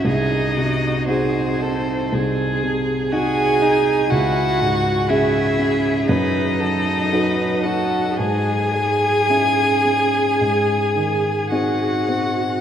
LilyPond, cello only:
\new Staff \with { instrumentName = "Cello" } { \time 4/4 \key cis \minor \tempo 4 = 58 dis'4 bis4. r8 gis'4 | fis'4 e'4 dis'4. fis'8 | gis'2. fis'4 | }